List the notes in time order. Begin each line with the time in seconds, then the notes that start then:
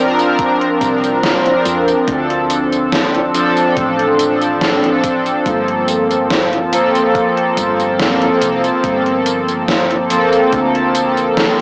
Already playing: C2 F3 C4 D4 A#4
0.19 closed hi-hat, tambourine
0.39 kick, closed hi-hat, tambourine
0.61 closed hi-hat
0.80 C2 F3 C4 D4 A#4, kick, closed hi-hat, tambourine
1.04 closed hi-hat, tambourine
1.23 snare, closed hi-hat, tambourine
1.45 F3 C4 D4 A#4, closed hi-hat
1.65 F2 F3 C4 D4 A#4, closed hi-hat, tambourine
1.88 closed hi-hat, tambourine
2.06 D2 F3 C4 D4 A4, kick, closed hi-hat, tambourine
2.30 closed hi-hat
2.50 closed hi-hat, tambourine
2.73 closed hi-hat, tambourine
2.92 snare, closed hi-hat, tambourine
3.15 closed hi-hat
3.33 F3 C4 D4 A4, closed hi-hat, tambourine
3.57 closed hi-hat, tambourine
3.77 A1, kick, closed hi-hat, tambourine
3.99 closed hi-hat
4.18 F3 C4 D4 A4, closed hi-hat, tambourine
4.42 closed hi-hat, tambourine
4.61 snare, closed hi-hat, tambourine
4.83 F3 C4 D4 A4, closed hi-hat
5.03 F3 C4 D4 A4, kick, closed hi-hat, tambourine
5.26 closed hi-hat, tambourine
5.44 G1 F3 A#3 C4 A4, kick, closed hi-hat, tambourine
5.68 closed hi-hat
5.88 closed hi-hat, tambourine
6.11 closed hi-hat, tambourine
6.30 snare, closed hi-hat, tambourine
6.53 closed hi-hat
6.72 F3 A#3 C4 A4, closed hi-hat, tambourine
6.95 closed hi-hat, tambourine
7.15 kick, closed hi-hat, tambourine
7.37 closed hi-hat
7.57 G1 F3 A#3 C4 A4, kick, closed hi-hat, tambourine
7.80 closed hi-hat, tambourine
7.99 snare, closed hi-hat, tambourine
8.21 F3 A#3 C4 A4, closed hi-hat
8.41 C2 F3 A#3 C4 A4, closed hi-hat, tambourine
8.64 closed hi-hat, tambourine
8.83 G1 F3 A#3 C4 A4, kick, closed hi-hat, tambourine
9.06 closed hi-hat
9.26 closed hi-hat, tambourine
9.48 closed hi-hat, tambourine
9.68 snare, closed hi-hat, tambourine
9.91 closed hi-hat
10.10 F3 A#3 C4 A4, closed hi-hat, tambourine
10.33 closed hi-hat, tambourine
10.53 D2, kick, closed hi-hat, tambourine
10.75 closed hi-hat
10.94 F3 A#3 C4 A4, closed hi-hat, tambourine
11.17 closed hi-hat, tambourine
11.37 snare, closed hi-hat, tambourine